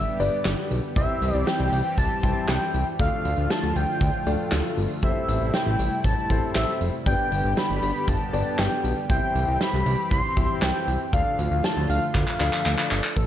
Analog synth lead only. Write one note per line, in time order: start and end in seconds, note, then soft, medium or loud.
0.00 0.18 E5 medium
0.20 0.67 D5 medium
0.96 1.34 E5 loud
1.34 1.48 D5 loud
1.47 1.97 G5 loud
1.98 2.50 A5 loud
2.49 2.87 G5 loud
3.00 3.52 F5 loud
3.51 3.78 A5 loud
3.76 4.52 G5 loud
5.03 5.55 E5 medium
5.54 6.04 G5 medium
6.05 6.52 A5 loud
6.56 6.91 E5 medium
7.07 7.59 G5 loud
7.57 8.10 B5 loud
8.08 8.61 A5 loud
8.59 8.97 G5 loud
9.10 9.62 G5 loud
9.61 10.11 B5 loud
10.12 10.64 C6 loud
10.62 11.01 G5 loud
11.13 11.66 F5 loud
11.64 11.89 A5 loud
11.90 12.13 F5 loud
12.15 12.87 F5 medium
13.16 13.27 A4 loud